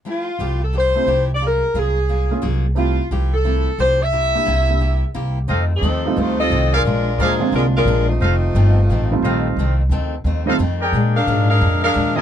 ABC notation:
X:1
M:4/4
L:1/8
Q:"Swing" 1/4=176
K:F
V:1 name="Trumpet section"
z8 | z8 | z8 | z8 |
[K:Fmix] [Acef] z6 [_ABdf] | z2 [_ABdf] z4 z | [Acef] z4 z [Acef]2- | [Acef] z4 [Acef] z [_ABdg]- |
[_ABdg]2 z3 [ABdf] z [ABf_a] |]
V:2 name="Saxophone section"
F3 A c3 d | B2 _A4 z2 | F2 z A3 c e- | e6 z2 |
[K:Fmix] z [F,CEA]3 [A,EFc] [CFAe]2 [_A,DFB]- | [_A,DFB]2 [B,F_Ac]2 [A,DFB] [A,DFB]2 [=A,CEF]- | [A,CEF]6- [A,CEF] z | z8 |
z [D_ABf]2 [DABf]2 [DABf]2 [B,FAe] |]
V:3 name="Grand piano"
z4 z [A,CEG] z2 | z4 z [B,_DF_A] z2 | [A,CEG] z3 [A,CEA] z3 | z [B,DEG] z [B,DEG] z4 |
[K:Fmix] z3 [G,A,CEF]3 z2 | z3 [D,_A,B,CF]3 z2 | z4 z [E,G,A,CF]3 | z4 z [E,G,A,CF] z2 |
z6 z [D,_A,B,CF] |]
V:4 name="Steel-string acoustic guitar"
[F,A,EG] z [F,A,EG] z [F,A,EG] z [F,A,EG] z | [_G,B,F_A] z [G,B,FA] z [G,B,FA] z [G,B,FA] z | [F,A,EG] z [F,A,EG] z [F,A,EG] z [F,A,EG] z | [C,B,EG] z [C,B,EG] z [C,B,EG] z [C,B,EG] z |
[K:Fmix] [F,,E,A,C] z [F,,E,A,C] z [F,,E,A,C] z [F,,E,A,C] z | [B,,F,_A,D] z [B,,F,A,D] z [B,,F,A,D] z [B,,F,A,D] z | [F,,E,A,C] z [F,,E,A,C] z [F,,E,A,C] z [F,,E,A,C] z | [F,,E,A,C] z [F,,E,A,C] z [F,,E,A,C] z [F,,E,A,C] z |
[B,,F,_A,D] z [B,,F,A,D] z [B,,F,A,D] z [B,,F,A,D] z |]
V:5 name="Upright bass" clef=bass
z2 C,,3 z C,,2- | C,, z C,,3 z C,,2- | C,, z C,,3 z C,,2- | C,, z C,,3 z C,,2 |
[K:Fmix] F,,2 E,,2 D,,2 C,,2 | B,,,2 D,,2 C,,2 B,,,2 | F,,,2 G,,,2 A,,,2 B,,,2 | C,,2 D,,2 E,,2 F,,2 |
B,,2 _A,,2 F,,2 E,,2 |]